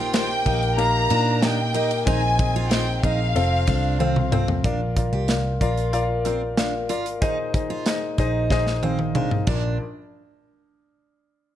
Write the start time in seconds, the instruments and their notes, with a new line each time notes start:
Already playing: picked electric bass A#1, grand piano A#2 A#3 D#4 G4 A#4 C5 D#5, violin section G5
0.00 steel-string acoustic guitar F4
0.13 grand piano A#3 D#4 G4 A#4 C5, violin section G5, snare, ride
0.45 picked electric bass A#1, grand piano A#3 D#4 G4 A#4 F5, steel-string acoustic guitar D#4, kick, ride
0.63 ride
0.77 grand piano A#3 D#4 G4 A#4 F5, violin section A#5, ride
1.10 picked electric bass A#2, grand piano A#3 D#4 G4 A#4 F5, steel-string acoustic guitar D4, ride
1.42 grand piano A#3 D#4 G4 A#4 D#5, steel-string acoustic guitar D4, violin section G5, snare, ride
1.74 grand piano A#3 D#4 G4 A#4 D#5, steel-string acoustic guitar D#4, ride
1.91 ride
2.06 picked electric bass A#1, grand piano A#2 C4 D#4 G#4 C5 D#5, steel-string acoustic guitar D#4, violin section G#5, kick, ride
2.38 grand piano C4 D#4 G#4 C5 D#5, kick, ride
2.56 steel-string acoustic guitar F4
2.70 grand piano C4 D#4 G#4 C5 D#5, violin section G5, snare, ride
3.03 picked electric bass A#1, grand piano C4 D#4 G#4 C5 D#5, steel-string acoustic guitar D#4, violin section F5, kick, ride
3.35 picked electric bass F1, grand piano C4 F4 A4 C5 F5, ride
3.67 picked electric bass C2, grand piano C4 F4 A4 C5 F5, steel-string acoustic guitar D4, kick, ride
3.99 grand piano C4 F4 A4 C5 F5, steel-string acoustic guitar C4, high tom
4.16 mid tom
4.32 grand piano C4 F4 A4 C5 F5, steel-string acoustic guitar C4, mid tom
4.48 floor tom
4.64 picked electric bass A#1, grand piano A#2 F4 A#4 D5 F5, steel-string acoustic guitar D4, kick, closed hi-hat
4.96 grand piano F4 A#4 D5 F5, kick, closed hi-hat
5.13 picked electric bass C2, steel-string acoustic guitar G4
5.28 grand piano F4 A#4 D5 F5, snare, closed hi-hat
5.61 picked electric bass A#1, grand piano F4 A#4 D5 F5, steel-string acoustic guitar F4, kick, closed hi-hat
5.77 closed hi-hat
5.93 grand piano F4 A#4 D5 F5, closed hi-hat
6.25 steel-string acoustic guitar C4, grand piano F4 A#4 D5 F5, closed hi-hat
6.57 steel-string acoustic guitar D4, grand piano F4 A#4 D5 F5, snare, closed hi-hat
6.89 picked electric bass G#1, grand piano F4 A#4 D5 F5, steel-string acoustic guitar F4, closed hi-hat
7.06 closed hi-hat
7.21 picked electric bass A#1, grand piano A#2 D#4 G#4 C5 D#5, steel-string acoustic guitar D#4, kick, closed hi-hat
7.54 grand piano D#4 G#4 C5 D#5, kick, closed hi-hat
7.70 picked electric bass C2, steel-string acoustic guitar F4
7.86 grand piano D#4 G#4 C5 D#5, snare, closed hi-hat
8.18 picked electric bass A#1, steel-string acoustic guitar D#4, grand piano D#4 G#4 C5 D#5, kick, closed hi-hat
8.50 grand piano D#4 G#4 C5 D#5, kick, snare
8.67 snare
8.83 steel-string acoustic guitar C4, grand piano D#4 G#4 C5 F5, high tom
8.99 high tom
9.15 steel-string acoustic guitar D4, grand piano D#4 G#4 C5 F5, mid tom
9.31 mid tom
9.47 picked electric bass A#1, grand piano A#1 D4 F4 A#4 D5, steel-string acoustic guitar D4, kick, crash